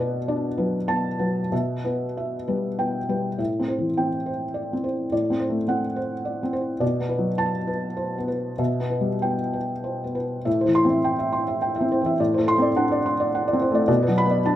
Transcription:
0.00 1.47 B2 medium
0.00 0.46 B3 soft
0.00 0.46 B4 soft
0.00 0.16 D5 medium
0.28 0.76 D4 soft
0.28 0.76 D5 soft
0.58 1.07 F#3 soft
0.58 1.07 B4 soft
0.88 1.38 B3 soft
0.88 1.38 A5 medium
1.19 1.51 F#3 soft
1.19 1.51 B4 soft
1.52 3.35 B2 soft
1.52 2.04 E5 soft
1.84 2.35 B3 soft
1.84 2.35 B4 soft
2.17 2.67 E5 soft
2.48 2.98 G3 soft
2.48 2.97 B4 soft
2.79 3.28 B3 soft
2.79 3.28 G5 medium
3.09 3.39 G3 soft
3.09 3.39 B4 soft
3.38 5.07 A2 soft
3.38 3.85 E5 soft
3.60 3.90 C4 soft
3.68 4.14 C5 soft
3.78 4.09 E3 soft
3.97 4.28 C4 soft
3.97 4.43 G5 soft
4.26 4.72 C5 soft
4.54 4.83 D5 soft
4.73 5.04 C4 soft
4.84 5.12 C5 soft
5.12 6.78 A2 soft
5.12 5.57 D5 soft
5.30 5.61 C4 soft
5.40 5.85 C5 soft
5.50 5.80 A3 soft
5.68 5.98 C4 soft
5.68 6.14 F#5 medium
5.96 6.42 C5 soft
6.25 6.53 D5 soft
6.43 6.74 C4 soft
6.53 6.81 C5 soft
6.80 8.54 B2 medium
6.80 7.27 D5 soft
7.00 7.31 B3 soft
7.09 7.56 B4 soft
7.18 7.50 F#3 soft
7.38 7.70 B3 soft
7.38 7.86 A5 medium
7.67 8.16 B4 soft
7.97 8.28 C5 soft
8.18 8.51 B3 soft
8.28 8.59 B4 soft
8.59 10.41 B2 soft
8.59 9.09 E5 soft
8.80 9.13 B3 soft
8.90 9.41 B4 soft
9.01 9.34 G3 soft
9.22 9.55 B3 soft
9.22 9.72 G5 medium
9.53 10.03 B4 soft
9.84 10.15 C5 soft
10.04 10.37 B3 soft
10.15 10.46 B4 soft
10.45 12.15 A2 medium
10.45 10.69 E5 medium
10.61 10.84 C5 soft
10.65 10.96 E3 soft
10.75 10.98 C6 medium
10.85 11.15 C4 soft
10.90 11.13 E5 soft
11.04 11.27 G5 medium
11.19 11.42 E5 soft
11.33 11.56 C6 soft
11.48 11.71 E5 soft
11.62 11.85 G5 medium
11.76 11.99 E5 medium
11.81 12.11 C4 soft
11.92 12.14 C5 medium
12.01 12.19 E3 soft
12.06 12.19 E5 medium
12.20 13.86 A2 medium
12.20 12.42 D5 medium
12.34 12.68 A3 soft
12.34 12.56 C5 medium
12.48 12.70 C6 medium
12.58 12.88 C4 medium
12.58 12.85 D5 medium
12.76 13.07 D4 medium
12.76 12.99 F#5 medium
12.92 13.14 D5 medium
13.06 13.28 C6 medium
13.20 13.42 D5 medium
13.35 13.56 F#5 medium
13.48 13.70 D5 medium
13.53 13.82 C4 medium
13.62 13.84 C5 medium
13.71 13.89 A3 medium
13.71 13.86 D5 medium
13.88 14.56 B2 medium
13.88 14.11 D5 medium
14.03 14.25 B4 medium
14.08 14.38 F#3 medium
14.18 14.40 B5 medium
14.26 14.56 B3 medium
14.31 14.54 D5 medium
14.46 14.56 D4 medium
14.46 14.56 A5 medium

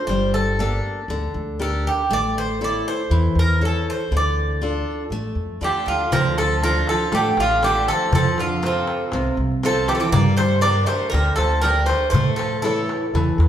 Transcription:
0.07 0.78 G1 medium
0.07 0.58 G3 medium
0.07 0.31 C5 medium
0.34 0.57 A4 medium
0.59 1.00 A#3 medium
0.59 1.00 D4 soft
0.59 1.00 G4 soft
0.59 1.31 A4 medium
1.08 1.26 D2 medium
1.08 1.59 D3 medium
1.34 1.87 D2 medium
1.59 2.00 D4 soft
1.59 2.00 G4 soft
1.59 1.84 A4 medium
1.59 2.00 A#4 soft
1.87 2.12 G4 medium
2.10 2.80 A1 medium
2.10 2.59 A3 medium
2.10 2.35 D5 medium
2.38 2.60 C5 medium
2.61 3.01 E4 soft
2.61 3.01 A4 soft
2.61 3.01 C#5 soft
2.61 2.86 D5 medium
2.88 3.39 C5 medium
3.10 3.28 E2 medium
3.10 3.60 E3 medium
3.35 3.88 E2 medium
3.35 3.61 A#4 medium
3.61 4.02 E4 soft
3.61 4.02 A4 soft
3.61 3.87 A4 medium
3.61 4.02 C#5 soft
3.90 4.14 C5 medium
4.11 4.82 D2 medium
4.11 4.60 D3 medium
4.17 5.61 D5 medium
4.62 5.02 D4 soft
4.62 5.02 F4 soft
4.62 5.02 A4 soft
5.10 5.28 A1 medium
5.10 5.61 A3 medium
5.35 5.59 F2 medium
5.61 5.84 E2 medium
5.61 5.85 D3 medium
5.61 6.02 D4 soft
5.61 6.02 F4 soft
5.61 5.89 G4 medium
5.61 6.02 A4 soft
5.86 6.10 D2 medium
5.86 6.10 D3 medium
5.86 6.14 F4 medium
6.11 6.82 D2 medium
6.11 6.61 D3 medium
6.11 6.35 F3 medium
6.11 6.36 A#4 loud
6.11 darbuka dum medium
6.26 darbuka tek soft
6.38 6.61 F3 medium
6.38 6.61 A4 medium
6.38 darbuka tek medium
6.51 darbuka tek soft
6.63 6.87 F3 medium
6.63 7.03 D4 soft
6.63 7.03 F4 soft
6.63 7.03 A4 soft
6.63 6.86 A#4 loud
6.63 darbuka tek medium
6.87 7.12 F3 medium
6.87 7.14 A4 medium
6.87 darbuka tek medium
7.00 darbuka tek soft
7.12 7.30 A1 medium
7.12 7.38 D3 medium
7.12 7.61 A3 medium
7.12 7.37 G4 medium
7.12 darbuka tek medium
7.25 darbuka tek soft
7.37 7.90 A1 loud
7.37 7.62 D3 medium
7.37 7.62 F4 medium
7.37 darbuka tek medium
7.51 darbuka tek soft
7.62 7.88 D3 medium
7.62 8.03 D4 soft
7.62 8.03 F4 soft
7.62 7.88 G4 medium
7.62 8.03 A4 soft
7.62 darbuka tek medium
7.88 8.13 F3 medium
7.88 8.11 A4 medium
7.88 darbuka tek medium
8.12 8.82 F2 medium
8.12 8.61 F3 medium
8.12 8.37 F3 medium
8.12 8.40 A4 medium
8.12 darbuka dum medium
8.26 darbuka tek soft
8.38 8.62 D3 medium
8.38 8.65 F4 medium
8.38 darbuka tek medium
8.50 darbuka tek soft
8.63 9.36 C3 medium
8.63 9.03 C4 medium
8.63 9.03 F4 soft
8.63 9.36 F4 medium
8.63 9.03 A4 medium
8.63 darbuka tek medium
8.87 darbuka tek medium
9.00 darbuka tek soft
9.12 9.30 C2 medium
9.12 9.62 C3 medium
9.12 darbuka tek medium
9.25 darbuka tek soft
9.37 9.90 C2 medium
9.51 darbuka tek soft
9.63 9.87 F3 medium
9.63 10.03 C4 soft
9.63 10.04 F4 soft
9.63 10.04 A4 soft
9.63 9.88 A4 medium
9.63 darbuka tek medium
9.76 darbuka tek soft
9.88 9.94 E3 medium
9.88 9.94 G4 medium
9.88 darbuka tek medium
9.95 10.01 F3 medium
9.95 10.00 A4 medium
10.00 10.12 E3 medium
10.00 10.12 G4 medium
10.12 10.83 G2 medium
10.12 10.62 G3 medium
10.12 10.36 A#3 medium
10.12 10.37 D5 loud
10.12 darbuka dum loud
10.26 darbuka tek soft
10.37 10.61 A3 medium
10.37 10.61 C5 medium
10.37 darbuka tek medium
10.51 darbuka tek soft
10.61 10.86 A#3 medium
10.61 11.04 D4 soft
10.61 11.04 G4 soft
10.61 11.05 A#4 medium
10.61 10.86 D5 loud
10.61 darbuka tek medium
10.86 11.11 A3 medium
10.86 11.09 C5 medium
10.86 darbuka tek medium
11.02 darbuka tek soft
11.10 11.31 D2 medium
11.10 11.36 G3 medium
11.10 11.35 A#4 medium
11.14 11.63 D3 medium
11.14 darbuka tek medium
11.27 darbuka tek soft
11.36 11.91 D2 medium
11.36 11.61 F3 medium
11.36 11.61 A4 medium
11.36 darbuka tek medium
11.51 darbuka tek soft
11.61 11.87 G3 medium
11.61 12.04 D4 soft
11.61 12.04 G4 soft
11.61 11.86 A#4 medium
11.61 12.05 A#4 soft
11.61 darbuka tek medium
11.77 darbuka tek soft
11.86 12.10 A3 medium
11.86 12.09 C5 medium
11.86 darbuka tek medium
12.10 12.84 A2 medium
12.10 12.36 A3 medium
12.10 12.35 C5 medium
12.14 12.63 A3 medium
12.14 darbuka dum medium
12.36 12.61 F3 medium
12.36 12.61 A4 medium
12.36 darbuka tek medium
12.53 darbuka tek soft
12.62 13.35 E3 medium
12.62 13.04 E4 soft
12.62 13.35 A4 medium
12.62 13.05 A4 soft
12.62 13.05 C#5 medium
12.62 darbuka tek medium
12.89 darbuka tek medium
13.02 darbuka tek soft
13.14 13.32 E2 medium
13.14 13.48 E3 medium
13.14 darbuka tek medium
13.14 darbuka dum medium
13.38 13.48 E2 medium
13.38 darbuka tek medium

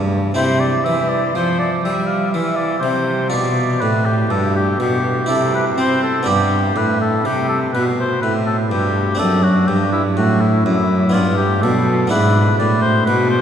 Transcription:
0.00 0.33 G2 medium
0.00 0.36 G2 medium
0.00 0.30 A3 soft
0.00 0.31 C4 soft
0.00 0.32 E4 soft
0.34 0.82 C3 soft
0.34 0.83 C3 medium
0.34 3.27 C4 soft
0.34 3.27 E4 soft
0.34 0.61 C5 medium
0.60 0.86 D5 medium
0.85 1.31 E3 soft
0.85 1.35 E3 soft
0.85 1.11 E5 medium
1.10 1.35 D5 medium
1.35 1.81 F3 soft
1.35 1.84 F3 soft
1.35 1.59 C5 medium
1.59 1.70 D5 medium
1.83 2.30 G3 soft
1.83 2.36 G3 soft
1.83 2.08 E5 medium
2.07 2.30 F5 medium
2.31 2.79 E3 soft
2.31 2.82 E3 soft
2.31 2.58 E5 medium
2.56 2.79 D5 medium
2.80 3.28 C3 soft
2.80 3.34 C3 medium
2.80 3.29 C5 medium
3.30 3.83 B2 medium
3.30 3.77 B2 soft
3.30 5.23 F4 soft
3.30 5.24 G4 soft
3.30 3.81 D5 medium
3.80 4.30 A2 medium
3.80 4.26 A2 soft
3.80 4.07 B4 medium
4.05 4.32 G4 medium
4.30 4.78 G2 medium
4.30 4.75 G2 soft
4.30 4.55 A4 medium
4.56 4.79 G4 medium
4.80 5.25 B2 soft
4.80 5.28 B2 soft
4.80 5.28 G4 medium
5.26 5.74 C3 soft
5.26 5.78 C3 medium
5.26 6.23 E4 soft
5.26 6.24 G4 soft
5.26 5.53 A4 medium
5.55 5.65 B4 medium
5.78 6.23 C4 soft
5.78 6.26 C4 medium
5.78 6.02 C5 medium
6.03 6.29 A4 medium
6.23 6.72 B3 soft
6.23 6.73 D4 soft
6.23 9.15 G4 soft
6.27 6.72 G2 soft
6.27 6.75 G2 medium
6.27 6.78 G4 medium
6.76 7.21 A2 soft
6.76 7.24 A2 medium
6.76 7.00 B4 medium
7.01 7.27 A4 medium
7.25 7.70 C3 soft
7.25 7.74 C3 medium
7.25 7.48 G4 medium
7.49 7.60 A4 medium
7.74 8.22 B2 medium
7.74 8.19 B2 soft
7.74 7.85 B4 medium
8.00 8.21 C5 medium
8.22 8.68 A2 soft
8.22 8.71 A2 medium
8.22 8.33 B4 medium
8.46 8.57 A4 medium
8.70 9.16 G2 medium
8.70 9.19 G2 medium
8.70 9.20 G4 medium
9.15 9.65 C4 soft
9.15 11.09 D4 soft
9.15 9.44 A4 medium
9.20 9.65 F#2 medium
9.20 9.72 F#2 medium
9.43 9.69 F#4 medium
9.68 10.13 G2 soft
9.68 10.20 G2 medium
9.68 9.92 G4 medium
9.92 10.03 E4 medium
10.17 10.61 A2 soft
10.17 10.66 A2 medium
10.17 10.42 F#4 medium
10.40 10.65 E4 medium
10.65 11.10 F#2 soft
10.65 11.16 F#2 medium
10.65 11.15 E4 medium
11.09 12.06 B3 soft
11.09 12.07 D4 soft
11.09 11.36 F4 medium
11.14 11.59 G2 soft
11.14 11.66 G2 medium
11.37 11.64 G4 medium
11.62 12.08 B2 medium
11.62 12.12 B2 medium
11.62 12.10 A4 medium
12.07 13.42 B3 soft
12.07 13.42 D4 soft
12.07 13.42 E4 soft
12.07 12.58 B4 medium
12.12 12.56 G#2 soft
12.12 12.59 G#2 medium
12.58 13.04 A2 soft
12.58 13.10 A2 medium
12.58 12.81 D5 medium
12.82 13.05 C5 medium
13.06 13.42 B2 medium
13.06 13.30 B4 medium
13.30 13.42 C5 medium

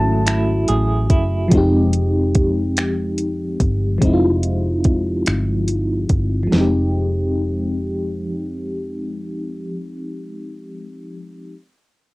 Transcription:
0.00 0.65 G#1 medium
0.00 1.46 F#3 medium
0.00 1.52 F#3 medium
0.00 1.50 A3 medium
0.00 1.60 A3 medium
0.00 1.48 C#4 medium
0.00 0.25 E4 medium
0.00 1.49 E4 medium
0.00 1.50 F#4 medium
0.00 0.68 G#4 medium
0.00 1.11 A5 loud
0.26 1.09 E4 medium
0.26 finger snap loud
0.26 closed hi-hat medium
0.68 1.11 A1 medium
0.68 2.10 G#4 medium
0.68 closed hi-hat soft
1.10 1.48 F#1 medium
1.10 1.60 E4 medium
1.10 kick medium
1.10 closed hi-hat soft
1.48 3.96 F3 medium
1.48 3.97 G#3 medium
1.48 kick loud
1.48 closed hi-hat medium
1.52 3.56 F1 loud
1.52 3.98 C4 medium
1.52 3.99 D#4 medium
1.57 4.00 G4 medium
1.93 closed hi-hat soft
2.35 kick medium
2.35 closed hi-hat soft
2.77 finger snap loud
2.77 closed hi-hat medium
3.18 closed hi-hat soft
3.60 3.98 G1 medium
3.60 kick medium
3.60 closed hi-hat soft
3.98 6.42 F3 medium
3.98 6.46 G#3 medium
3.98 kick loud
3.98 closed hi-hat medium
4.02 5.23 F1 medium
4.02 6.48 C4 medium
4.02 6.49 D#4 medium
4.07 4.11 E4 medium
4.13 6.53 F4 medium
4.43 closed hi-hat soft
4.84 kick medium
4.84 closed hi-hat soft
5.26 6.06 G1 medium
5.26 finger snap medium
5.26 closed hi-hat medium
5.68 closed hi-hat soft
6.09 6.48 G1 medium
6.09 kick medium
6.09 closed hi-hat soft
6.43 9.98 F3 medium
6.47 10.02 G#3 medium
6.52 10.08 F1 medium
6.52 10.07 C4 medium
6.52 snare medium
6.56 10.11 D#4 medium
6.61 10.15 G4 medium

